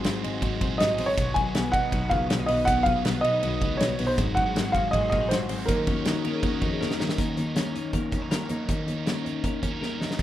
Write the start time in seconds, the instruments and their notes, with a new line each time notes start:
Already playing: overdriven electric guitar G#2 D#3 F#3 C4 D#4, clean electric guitar G#2 F#3 D#4, analog synth pad F#4 G#4 C6
0.04 double bass G#1, clean electric guitar C4, snare, ride
0.23 double bass G#1, overdriven electric guitar D#3 F#3 C4 D#4, clean electric guitar D#4, ride
0.42 double bass G#1, overdriven electric guitar D#3 F#3 C4 D#4, clean electric guitar F#3, kick, ride
0.60 double bass A#1, overdriven electric guitar D#3 F#3 C4 D#4, clean electric guitar C4, kick, ride
0.78 double bass G#1, clean electric guitar D#4, upright piano D#5, snare, ride
0.98 double bass G#1, overdriven electric guitar D#3 F#3 C4 D#4, clean electric guitar C4, open hi-hat, ride
1.06 upright piano C#5
1.17 double bass B1, clean electric guitar B2, overdriven electric guitar D#3 F#3 B3 D#4, analog synth pad B4 D#6, kick, hi-hat pedal, ride
1.34 double bass B1, clean electric guitar F#3, upright piano G#5, kick, ride
1.45 overdriven electric guitar B2 D#3 F#3 B3 D#4
1.55 double bass B1, clean electric guitar B3, snare, ride
1.72 double bass B1, overdriven electric guitar D#3 F#3 B3 D#4, clean electric guitar D#4, upright piano F#5, kick, ride
1.92 double bass B1, overdriven electric guitar D#3 F#3 B3 D#4, clean electric guitar F#3, kick, ride
2.09 double bass C#2, overdriven electric guitar D#3 F#3 B3, clean electric guitar B3, upright piano F5, kick, ride
2.14 overdriven electric guitar D#4
2.30 double bass B1, clean electric guitar C#4, snare, ride
2.40 clean electric guitar D#4
2.46 double bass B1, overdriven electric guitar D#3 F#3 B3, clean electric guitar B3, upright piano D#5, open hi-hat, ride
2.51 overdriven electric guitar D#4
2.65 double bass B1, clean electric guitar B2, overdriven electric guitar D#3 F#3 B3, upright piano F#5, kick, hi-hat pedal, ride
2.70 overdriven electric guitar D#4
2.83 double bass B1, clean electric guitar F#3, upright piano F5, kick, ride
2.96 overdriven electric guitar B2 D#3 F#3 B3 D#4
3.05 double bass B1, clean electric guitar B3, snare, ride
3.21 double bass B1, overdriven electric guitar D#3 F#3, clean electric guitar D#4, upright piano D#5, ride
3.25 overdriven electric guitar B3 D#4
3.43 double bass B1, overdriven electric guitar D#3 F#3 B3 D#4, clean electric guitar F#3, ride
3.61 double bass C#2, overdriven electric guitar D#3 F#3 B3 D#4, clean electric guitar B3, kick, ride
3.77 double bass B1, clean electric guitar D#4, upright piano C#5, snare, ride
3.98 double bass B1, overdriven electric guitar D#3 F#3 B3 D#4, clean electric guitar B3, open hi-hat, ride
4.07 upright piano C5
4.17 double bass G#1, clean electric guitar G#2, overdriven electric guitar D#3 F#3 C4 F#4, analog synth pad G#4 C6, kick, hi-hat pedal, ride
4.35 double bass G#1, clean electric guitar F#3, upright piano F#5, kick, ride
4.46 overdriven electric guitar G#2 D#3 F#3 C4 F#4
4.55 double bass G#1, clean electric guitar A#3, snare, ride
4.65 clean electric guitar C4
4.72 double bass G#1, overdriven electric guitar D#3 F#3 C4 F#4, clean electric guitar F#4, upright piano F5, kick, ride
4.91 double bass G#1, overdriven electric guitar D#3 F#3 C4 F#4, clean electric guitar F#3, upright piano D#5, kick, ride
5.10 double bass A#1, overdriven electric guitar D#3 F#3 C4, clean electric guitar A#3, upright piano D#5, kick, ride
5.14 overdriven electric guitar F#4
5.21 clean electric guitar C4
5.29 double bass G#1, clean electric guitar F#4, upright piano C5, snare, ride
5.49 double bass G#1, overdriven electric guitar D#3 F#3 C4 F#4, clean electric guitar C4, open hi-hat, ride
5.65 double bass D#2, clean electric guitar D#3, overdriven electric guitar F#3 C#4, upright piano A#4, analog synth pad C#5 D#6, kick, hi-hat pedal, ride
5.70 overdriven electric guitar D#4 A#4
5.87 double bass D#2, clean electric guitar C#4, kick, ride
5.97 overdriven electric guitar D#3 F#3 C#4 D#4 A#4
6.05 double bass D#2, clean electric guitar D#4, vibraphone F#4, snare, ride
6.24 double bass D#2, overdriven electric guitar F#3 C#4 D#4 A#4, clean electric guitar A#4, ride
6.32 vibraphone G#4 A#4
6.43 double bass D#2, overdriven electric guitar F#3 C#4 D#4 A#4, clean electric guitar C#4, vibraphone F#4, kick, ride
6.61 double bass F2, overdriven electric guitar F#3 C#4 D#4 A#4, clean electric guitar D#4, kick, ride
6.71 vibraphone G#4
6.81 double bass D#2, clean electric guitar A#4, vibraphone A#4, snare
6.91 snare
7.00 double bass D#2, overdriven electric guitar F#3 C#4 D#4 A#4, clean electric guitar D#4, snare
7.09 snare
7.18 double bass D#2, overdriven electric guitar D#3 F#3 C#4 D#4 A#4, clean electric guitar D#3, kick, closed hi-hat
7.37 double bass D#2, clean electric guitar D#4, closed hi-hat
7.46 overdriven electric guitar C#4 D#4 A#4
7.55 double bass D#2, clean electric guitar C#4, snare, closed hi-hat
7.65 overdriven electric guitar C#4 D#4 A#4
7.75 double bass D#2, clean electric guitar D#4, closed hi-hat
7.93 double bass D#2, clean electric guitar A#4, kick, closed hi-hat
8.11 double bass D#2, overdriven electric guitar F#3 C#4 D#4 A#4, clean electric guitar C#4, kick, closed hi-hat
8.22 clean electric guitar D#4
8.31 double bass D#2, overdriven electric guitar F#3 C#4 D#4 A#4, clean electric guitar A#4, snare, closed hi-hat
8.49 double bass D#2, overdriven electric guitar F#3 C#4 D#4 A#4, clean electric guitar D#4, closed hi-hat
8.69 double bass D#2, overdriven electric guitar D#3 F#3 C#4 D#4 A#4, clean electric guitar D#3, kick, closed hi-hat
8.87 double bass D#2, clean electric guitar D#4, closed hi-hat
8.97 overdriven electric guitar C#4 D#4 A#4
9.06 double bass D#2, clean electric guitar C#4, snare, closed hi-hat
9.15 overdriven electric guitar C#4 D#4 A#4
9.25 double bass D#2, clean electric guitar D#4, closed hi-hat
9.44 double bass D#2, clean electric guitar A#4, kick, closed hi-hat
9.62 double bass D#2, overdriven electric guitar F#3 C#4 D#4 A#4, clean electric guitar C#4, kick, closed hi-hat
9.72 clean electric guitar D#4
9.80 double bass D#2, overdriven electric guitar F#3 C#4 D#4 A#4, clean electric guitar A#4, snare
9.99 double bass D#2, overdriven electric guitar F#3 C#4 D#4 A#4, clean electric guitar D#4, snare
10.11 snare
10.19 double bass D#2, overdriven electric guitar D#3 F#3, clean electric guitar D#3, kick